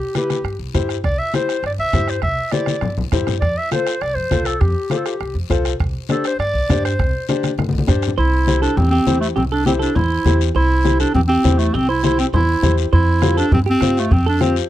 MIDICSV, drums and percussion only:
0, 0, Header, 1, 3, 480
1, 0, Start_track
1, 0, Key_signature, 0, "major"
1, 0, Tempo, 297324
1, 1681, Time_signature, 4, 2, 24, 8
1, 23720, End_track
2, 0, Start_track
2, 0, Title_t, "Two-headed folk drums"
2, 241, Note_on_c, 9, 37, 75
2, 402, Note_off_c, 9, 37, 0
2, 483, Note_on_c, 9, 37, 68
2, 644, Note_off_c, 9, 37, 0
2, 721, Note_on_c, 9, 37, 78
2, 882, Note_off_c, 9, 37, 0
2, 1206, Note_on_c, 9, 36, 69
2, 1206, Note_on_c, 9, 37, 69
2, 1367, Note_off_c, 9, 36, 0
2, 1367, Note_off_c, 9, 37, 0
2, 1437, Note_on_c, 9, 37, 72
2, 1599, Note_off_c, 9, 37, 0
2, 1683, Note_on_c, 9, 37, 76
2, 1685, Note_on_c, 9, 36, 78
2, 1844, Note_off_c, 9, 37, 0
2, 1846, Note_off_c, 9, 36, 0
2, 2166, Note_on_c, 9, 37, 77
2, 2327, Note_off_c, 9, 37, 0
2, 2405, Note_on_c, 9, 37, 75
2, 2566, Note_off_c, 9, 37, 0
2, 2643, Note_on_c, 9, 37, 79
2, 2805, Note_off_c, 9, 37, 0
2, 3121, Note_on_c, 9, 36, 73
2, 3124, Note_on_c, 9, 37, 72
2, 3283, Note_off_c, 9, 36, 0
2, 3285, Note_off_c, 9, 37, 0
2, 3352, Note_on_c, 9, 37, 72
2, 3513, Note_off_c, 9, 37, 0
2, 3581, Note_on_c, 9, 37, 80
2, 3593, Note_on_c, 9, 36, 75
2, 3743, Note_off_c, 9, 37, 0
2, 3754, Note_off_c, 9, 36, 0
2, 4061, Note_on_c, 9, 37, 77
2, 4222, Note_off_c, 9, 37, 0
2, 4298, Note_on_c, 9, 37, 73
2, 4459, Note_off_c, 9, 37, 0
2, 4541, Note_on_c, 9, 37, 80
2, 4702, Note_off_c, 9, 37, 0
2, 5036, Note_on_c, 9, 37, 74
2, 5039, Note_on_c, 9, 36, 75
2, 5197, Note_off_c, 9, 37, 0
2, 5200, Note_off_c, 9, 36, 0
2, 5276, Note_on_c, 9, 37, 73
2, 5438, Note_off_c, 9, 37, 0
2, 5520, Note_on_c, 9, 36, 79
2, 5523, Note_on_c, 9, 37, 73
2, 5682, Note_off_c, 9, 36, 0
2, 5684, Note_off_c, 9, 37, 0
2, 6003, Note_on_c, 9, 37, 77
2, 6164, Note_off_c, 9, 37, 0
2, 6242, Note_on_c, 9, 37, 72
2, 6403, Note_off_c, 9, 37, 0
2, 6484, Note_on_c, 9, 37, 83
2, 6645, Note_off_c, 9, 37, 0
2, 6966, Note_on_c, 9, 36, 73
2, 6968, Note_on_c, 9, 37, 74
2, 7128, Note_off_c, 9, 36, 0
2, 7130, Note_off_c, 9, 37, 0
2, 7205, Note_on_c, 9, 37, 75
2, 7366, Note_off_c, 9, 37, 0
2, 7444, Note_on_c, 9, 37, 77
2, 7447, Note_on_c, 9, 36, 75
2, 7606, Note_off_c, 9, 37, 0
2, 7609, Note_off_c, 9, 36, 0
2, 7926, Note_on_c, 9, 37, 74
2, 8087, Note_off_c, 9, 37, 0
2, 8164, Note_on_c, 9, 37, 75
2, 8326, Note_off_c, 9, 37, 0
2, 8405, Note_on_c, 9, 37, 76
2, 8567, Note_off_c, 9, 37, 0
2, 8886, Note_on_c, 9, 36, 77
2, 8891, Note_on_c, 9, 37, 74
2, 9048, Note_off_c, 9, 36, 0
2, 9052, Note_off_c, 9, 37, 0
2, 9127, Note_on_c, 9, 37, 78
2, 9288, Note_off_c, 9, 37, 0
2, 9366, Note_on_c, 9, 36, 75
2, 9369, Note_on_c, 9, 37, 79
2, 9527, Note_off_c, 9, 36, 0
2, 9531, Note_off_c, 9, 37, 0
2, 9846, Note_on_c, 9, 37, 76
2, 10007, Note_off_c, 9, 37, 0
2, 10091, Note_on_c, 9, 37, 78
2, 10253, Note_off_c, 9, 37, 0
2, 10329, Note_on_c, 9, 37, 84
2, 10491, Note_off_c, 9, 37, 0
2, 10812, Note_on_c, 9, 36, 76
2, 10818, Note_on_c, 9, 37, 76
2, 10974, Note_off_c, 9, 36, 0
2, 10979, Note_off_c, 9, 37, 0
2, 11060, Note_on_c, 9, 37, 75
2, 11221, Note_off_c, 9, 37, 0
2, 11291, Note_on_c, 9, 36, 81
2, 11295, Note_on_c, 9, 37, 81
2, 11452, Note_off_c, 9, 36, 0
2, 11456, Note_off_c, 9, 37, 0
2, 11778, Note_on_c, 9, 37, 75
2, 11940, Note_off_c, 9, 37, 0
2, 12011, Note_on_c, 9, 37, 79
2, 12172, Note_off_c, 9, 37, 0
2, 12252, Note_on_c, 9, 37, 87
2, 12413, Note_off_c, 9, 37, 0
2, 12725, Note_on_c, 9, 37, 75
2, 12729, Note_on_c, 9, 36, 81
2, 12886, Note_off_c, 9, 37, 0
2, 12890, Note_off_c, 9, 36, 0
2, 12961, Note_on_c, 9, 37, 78
2, 13123, Note_off_c, 9, 37, 0
2, 20874, Note_on_c, 9, 36, 86
2, 21035, Note_off_c, 9, 36, 0
2, 21342, Note_on_c, 9, 37, 82
2, 21503, Note_off_c, 9, 37, 0
2, 21824, Note_on_c, 9, 36, 89
2, 21985, Note_off_c, 9, 36, 0
2, 22290, Note_on_c, 9, 37, 81
2, 22451, Note_off_c, 9, 37, 0
2, 22783, Note_on_c, 9, 36, 84
2, 22944, Note_off_c, 9, 36, 0
2, 23262, Note_on_c, 9, 37, 83
2, 23423, Note_off_c, 9, 37, 0
2, 23720, End_track
3, 0, Start_track
3, 0, Title_t, "Drums"
3, 245, Note_on_c, 9, 63, 78
3, 245, Note_on_c, 9, 73, 63
3, 407, Note_off_c, 9, 63, 0
3, 407, Note_off_c, 9, 73, 0
3, 488, Note_on_c, 9, 63, 64
3, 488, Note_on_c, 9, 73, 57
3, 649, Note_off_c, 9, 63, 0
3, 649, Note_off_c, 9, 73, 0
3, 736, Note_on_c, 9, 74, 63
3, 897, Note_off_c, 9, 74, 0
3, 1201, Note_on_c, 9, 63, 71
3, 1203, Note_on_c, 9, 73, 65
3, 1362, Note_off_c, 9, 63, 0
3, 1364, Note_off_c, 9, 73, 0
3, 1451, Note_on_c, 9, 73, 65
3, 1613, Note_off_c, 9, 73, 0
3, 1688, Note_on_c, 9, 74, 62
3, 1850, Note_off_c, 9, 74, 0
3, 2157, Note_on_c, 9, 63, 80
3, 2163, Note_on_c, 9, 73, 61
3, 2319, Note_off_c, 9, 63, 0
3, 2324, Note_off_c, 9, 73, 0
3, 2408, Note_on_c, 9, 73, 62
3, 2569, Note_off_c, 9, 73, 0
3, 2642, Note_on_c, 9, 74, 63
3, 2804, Note_off_c, 9, 74, 0
3, 3120, Note_on_c, 9, 73, 61
3, 3122, Note_on_c, 9, 63, 74
3, 3281, Note_off_c, 9, 73, 0
3, 3283, Note_off_c, 9, 63, 0
3, 3364, Note_on_c, 9, 73, 64
3, 3525, Note_off_c, 9, 73, 0
3, 3592, Note_on_c, 9, 74, 64
3, 3753, Note_off_c, 9, 74, 0
3, 4077, Note_on_c, 9, 73, 68
3, 4079, Note_on_c, 9, 63, 87
3, 4238, Note_off_c, 9, 73, 0
3, 4241, Note_off_c, 9, 63, 0
3, 4313, Note_on_c, 9, 63, 75
3, 4330, Note_on_c, 9, 73, 64
3, 4474, Note_off_c, 9, 63, 0
3, 4492, Note_off_c, 9, 73, 0
3, 4557, Note_on_c, 9, 64, 84
3, 4576, Note_on_c, 9, 74, 64
3, 4718, Note_off_c, 9, 64, 0
3, 4738, Note_off_c, 9, 74, 0
3, 4804, Note_on_c, 9, 64, 69
3, 4965, Note_off_c, 9, 64, 0
3, 5047, Note_on_c, 9, 64, 82
3, 5049, Note_on_c, 9, 73, 64
3, 5208, Note_off_c, 9, 64, 0
3, 5210, Note_off_c, 9, 73, 0
3, 5283, Note_on_c, 9, 64, 74
3, 5295, Note_on_c, 9, 73, 63
3, 5445, Note_off_c, 9, 64, 0
3, 5456, Note_off_c, 9, 73, 0
3, 5524, Note_on_c, 9, 74, 58
3, 5685, Note_off_c, 9, 74, 0
3, 6000, Note_on_c, 9, 73, 64
3, 6004, Note_on_c, 9, 63, 80
3, 6162, Note_off_c, 9, 73, 0
3, 6165, Note_off_c, 9, 63, 0
3, 6240, Note_on_c, 9, 73, 65
3, 6402, Note_off_c, 9, 73, 0
3, 6477, Note_on_c, 9, 74, 62
3, 6638, Note_off_c, 9, 74, 0
3, 6957, Note_on_c, 9, 63, 78
3, 6960, Note_on_c, 9, 73, 63
3, 7118, Note_off_c, 9, 63, 0
3, 7122, Note_off_c, 9, 73, 0
3, 7189, Note_on_c, 9, 73, 65
3, 7350, Note_off_c, 9, 73, 0
3, 7439, Note_on_c, 9, 74, 63
3, 7600, Note_off_c, 9, 74, 0
3, 7908, Note_on_c, 9, 63, 81
3, 7924, Note_on_c, 9, 73, 64
3, 8069, Note_off_c, 9, 63, 0
3, 8085, Note_off_c, 9, 73, 0
3, 8163, Note_on_c, 9, 73, 63
3, 8325, Note_off_c, 9, 73, 0
3, 8402, Note_on_c, 9, 74, 69
3, 8564, Note_off_c, 9, 74, 0
3, 8874, Note_on_c, 9, 63, 72
3, 8882, Note_on_c, 9, 73, 67
3, 9035, Note_off_c, 9, 63, 0
3, 9044, Note_off_c, 9, 73, 0
3, 9123, Note_on_c, 9, 73, 65
3, 9285, Note_off_c, 9, 73, 0
3, 9357, Note_on_c, 9, 74, 63
3, 9519, Note_off_c, 9, 74, 0
3, 9829, Note_on_c, 9, 73, 66
3, 9833, Note_on_c, 9, 63, 85
3, 9991, Note_off_c, 9, 73, 0
3, 9994, Note_off_c, 9, 63, 0
3, 10076, Note_on_c, 9, 73, 63
3, 10238, Note_off_c, 9, 73, 0
3, 10335, Note_on_c, 9, 74, 66
3, 10496, Note_off_c, 9, 74, 0
3, 10808, Note_on_c, 9, 63, 83
3, 10823, Note_on_c, 9, 73, 68
3, 10969, Note_off_c, 9, 63, 0
3, 10984, Note_off_c, 9, 73, 0
3, 11065, Note_on_c, 9, 73, 63
3, 11227, Note_off_c, 9, 73, 0
3, 11294, Note_on_c, 9, 74, 62
3, 11455, Note_off_c, 9, 74, 0
3, 11764, Note_on_c, 9, 73, 65
3, 11767, Note_on_c, 9, 63, 79
3, 11925, Note_off_c, 9, 73, 0
3, 11928, Note_off_c, 9, 63, 0
3, 11999, Note_on_c, 9, 73, 66
3, 12006, Note_on_c, 9, 63, 72
3, 12161, Note_off_c, 9, 73, 0
3, 12167, Note_off_c, 9, 63, 0
3, 12232, Note_on_c, 9, 74, 68
3, 12246, Note_on_c, 9, 63, 100
3, 12394, Note_off_c, 9, 74, 0
3, 12407, Note_off_c, 9, 63, 0
3, 12411, Note_on_c, 9, 63, 96
3, 12563, Note_off_c, 9, 63, 0
3, 12563, Note_on_c, 9, 63, 92
3, 12719, Note_on_c, 9, 73, 71
3, 12725, Note_off_c, 9, 63, 0
3, 12725, Note_on_c, 9, 64, 67
3, 12880, Note_off_c, 9, 73, 0
3, 12886, Note_off_c, 9, 64, 0
3, 12954, Note_on_c, 9, 73, 64
3, 13038, Note_on_c, 9, 64, 73
3, 13116, Note_off_c, 9, 73, 0
3, 13199, Note_off_c, 9, 64, 0
3, 13205, Note_on_c, 9, 63, 30
3, 13212, Note_on_c, 9, 74, 67
3, 13367, Note_off_c, 9, 63, 0
3, 13374, Note_off_c, 9, 74, 0
3, 13678, Note_on_c, 9, 63, 80
3, 13690, Note_on_c, 9, 73, 73
3, 13839, Note_off_c, 9, 63, 0
3, 13851, Note_off_c, 9, 73, 0
3, 13928, Note_on_c, 9, 73, 65
3, 14089, Note_off_c, 9, 73, 0
3, 14161, Note_on_c, 9, 63, 38
3, 14161, Note_on_c, 9, 64, 89
3, 14173, Note_on_c, 9, 74, 74
3, 14322, Note_off_c, 9, 63, 0
3, 14322, Note_off_c, 9, 64, 0
3, 14335, Note_off_c, 9, 74, 0
3, 14641, Note_on_c, 9, 63, 82
3, 14648, Note_on_c, 9, 73, 70
3, 14803, Note_off_c, 9, 63, 0
3, 14809, Note_off_c, 9, 73, 0
3, 14894, Note_on_c, 9, 73, 68
3, 15055, Note_off_c, 9, 73, 0
3, 15121, Note_on_c, 9, 63, 32
3, 15121, Note_on_c, 9, 64, 69
3, 15137, Note_on_c, 9, 74, 68
3, 15282, Note_off_c, 9, 63, 0
3, 15282, Note_off_c, 9, 64, 0
3, 15298, Note_off_c, 9, 74, 0
3, 15593, Note_on_c, 9, 63, 87
3, 15614, Note_on_c, 9, 73, 71
3, 15754, Note_off_c, 9, 63, 0
3, 15775, Note_off_c, 9, 73, 0
3, 15851, Note_on_c, 9, 73, 70
3, 16012, Note_off_c, 9, 73, 0
3, 16080, Note_on_c, 9, 63, 37
3, 16080, Note_on_c, 9, 64, 88
3, 16097, Note_on_c, 9, 74, 70
3, 16241, Note_off_c, 9, 63, 0
3, 16241, Note_off_c, 9, 64, 0
3, 16258, Note_off_c, 9, 74, 0
3, 16557, Note_on_c, 9, 63, 81
3, 16561, Note_on_c, 9, 73, 67
3, 16718, Note_off_c, 9, 63, 0
3, 16723, Note_off_c, 9, 73, 0
3, 16807, Note_on_c, 9, 73, 71
3, 16968, Note_off_c, 9, 73, 0
3, 17038, Note_on_c, 9, 63, 33
3, 17042, Note_on_c, 9, 74, 66
3, 17199, Note_off_c, 9, 63, 0
3, 17204, Note_off_c, 9, 74, 0
3, 17518, Note_on_c, 9, 73, 67
3, 17520, Note_on_c, 9, 63, 82
3, 17679, Note_off_c, 9, 73, 0
3, 17681, Note_off_c, 9, 63, 0
3, 17756, Note_on_c, 9, 73, 68
3, 17918, Note_off_c, 9, 73, 0
3, 17992, Note_on_c, 9, 74, 72
3, 18003, Note_on_c, 9, 63, 35
3, 18003, Note_on_c, 9, 64, 88
3, 18154, Note_off_c, 9, 74, 0
3, 18165, Note_off_c, 9, 63, 0
3, 18165, Note_off_c, 9, 64, 0
3, 18473, Note_on_c, 9, 73, 74
3, 18487, Note_on_c, 9, 63, 87
3, 18635, Note_off_c, 9, 73, 0
3, 18649, Note_off_c, 9, 63, 0
3, 18710, Note_on_c, 9, 73, 66
3, 18871, Note_off_c, 9, 73, 0
3, 18954, Note_on_c, 9, 74, 68
3, 18968, Note_on_c, 9, 63, 32
3, 18968, Note_on_c, 9, 64, 64
3, 19115, Note_off_c, 9, 74, 0
3, 19129, Note_off_c, 9, 63, 0
3, 19129, Note_off_c, 9, 64, 0
3, 19432, Note_on_c, 9, 73, 71
3, 19442, Note_on_c, 9, 63, 84
3, 19593, Note_off_c, 9, 73, 0
3, 19604, Note_off_c, 9, 63, 0
3, 19677, Note_on_c, 9, 73, 69
3, 19839, Note_off_c, 9, 73, 0
3, 19918, Note_on_c, 9, 74, 73
3, 19924, Note_on_c, 9, 63, 35
3, 19924, Note_on_c, 9, 64, 91
3, 20079, Note_off_c, 9, 74, 0
3, 20085, Note_off_c, 9, 63, 0
3, 20085, Note_off_c, 9, 64, 0
3, 20396, Note_on_c, 9, 63, 82
3, 20396, Note_on_c, 9, 64, 67
3, 20399, Note_on_c, 9, 73, 72
3, 20557, Note_off_c, 9, 63, 0
3, 20557, Note_off_c, 9, 64, 0
3, 20561, Note_off_c, 9, 73, 0
3, 20624, Note_on_c, 9, 73, 67
3, 20786, Note_off_c, 9, 73, 0
3, 20876, Note_on_c, 9, 63, 34
3, 20879, Note_on_c, 9, 74, 67
3, 21037, Note_off_c, 9, 63, 0
3, 21040, Note_off_c, 9, 74, 0
3, 21348, Note_on_c, 9, 63, 92
3, 21351, Note_on_c, 9, 73, 70
3, 21509, Note_off_c, 9, 63, 0
3, 21512, Note_off_c, 9, 73, 0
3, 21594, Note_on_c, 9, 73, 71
3, 21755, Note_off_c, 9, 73, 0
3, 21830, Note_on_c, 9, 63, 35
3, 21830, Note_on_c, 9, 64, 90
3, 21835, Note_on_c, 9, 74, 70
3, 21991, Note_off_c, 9, 63, 0
3, 21991, Note_off_c, 9, 64, 0
3, 21997, Note_off_c, 9, 74, 0
3, 22306, Note_on_c, 9, 63, 81
3, 22316, Note_on_c, 9, 73, 74
3, 22468, Note_off_c, 9, 63, 0
3, 22477, Note_off_c, 9, 73, 0
3, 22557, Note_on_c, 9, 73, 69
3, 22718, Note_off_c, 9, 73, 0
3, 22790, Note_on_c, 9, 63, 33
3, 22790, Note_on_c, 9, 64, 66
3, 22791, Note_on_c, 9, 74, 67
3, 22951, Note_off_c, 9, 63, 0
3, 22951, Note_off_c, 9, 64, 0
3, 22952, Note_off_c, 9, 74, 0
3, 23259, Note_on_c, 9, 63, 83
3, 23277, Note_on_c, 9, 73, 71
3, 23421, Note_off_c, 9, 63, 0
3, 23439, Note_off_c, 9, 73, 0
3, 23511, Note_on_c, 9, 73, 69
3, 23672, Note_off_c, 9, 73, 0
3, 23720, End_track
0, 0, End_of_file